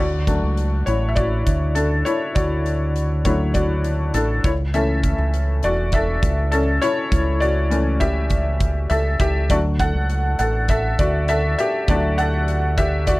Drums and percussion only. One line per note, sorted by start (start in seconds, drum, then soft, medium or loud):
0.27 kick medium
0.27 closed hi-hat medium
0.57 closed hi-hat medium
0.87 closed hi-hat medium
1.16 kick medium
1.16 closed hi-hat medium
1.47 kick medium
1.47 closed hi-hat medium
1.75 closed hi-hat medium
2.06 closed hi-hat medium
2.36 kick medium
2.36 closed hi-hat medium
2.66 closed hi-hat medium
2.96 closed hi-hat medium
3.25 kick medium
3.25 closed hi-hat medium
3.54 kick medium
3.54 closed hi-hat medium
3.84 closed hi-hat medium
4.14 closed hi-hat medium
4.44 kick medium
4.44 closed hi-hat medium
4.74 closed hi-hat medium
5.03 kick medium
5.03 closed hi-hat medium
5.34 closed hi-hat medium
5.63 closed hi-hat medium
5.92 kick medium
5.92 closed hi-hat medium
6.23 kick medium
6.23 closed hi-hat medium
6.52 closed hi-hat medium
6.82 closed hi-hat medium
7.12 kick medium
7.12 closed hi-hat medium
7.42 closed hi-hat medium
7.71 closed hi-hat medium
8.00 kick medium
8.00 closed hi-hat medium
8.30 kick medium
8.30 closed hi-hat medium
8.60 kick medium
8.60 closed hi-hat medium
8.90 closed hi-hat medium
9.20 kick medium
9.20 closed hi-hat medium
9.50 kick medium
9.50 closed hi-hat medium
9.79 kick medium
9.79 closed hi-hat medium
10.10 closed hi-hat medium
10.39 closed hi-hat medium
10.68 kick medium
10.68 closed hi-hat medium
10.99 kick medium
10.99 closed hi-hat medium
11.28 closed hi-hat medium
11.59 closed hi-hat medium
11.88 kick medium
11.88 closed hi-hat medium
12.18 closed hi-hat medium
12.48 closed hi-hat medium
12.78 kick medium
12.78 closed hi-hat medium
13.07 kick medium
13.07 closed hi-hat medium